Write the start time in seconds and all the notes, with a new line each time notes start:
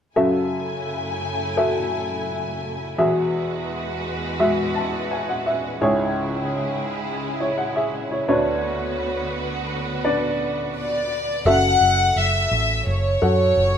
0.16 F#2 C#3 A3 E4 F#4 A4 E5 G#5
1.57 F#4 A4 E5
2.98 E2 B2 E3 G#3 F#4 G#4 B4 E5
4.40 G#3 F#4 E5
4.75 A5
5.11 G#5
5.29 F#5
5.46 E5
5.81 C#2 G#2 C#3 G#3 E4 G#4 C#5
7.40 E4 C#5
7.58 F#5
7.76 G#4 E5
8.11 E4 C#5
8.28 D2 D3 B3 D4 F#4 B4 C#5
10.04 D4 B4 D5
10.77 D5
11.46 F#1 C#3 F#4 A4 E5 F#5
11.81 F#1
12.16 F#1 E5
12.52 A1
12.87 F#1 C#5
13.22 F#2 F#4 A4 F#5
13.57 F#1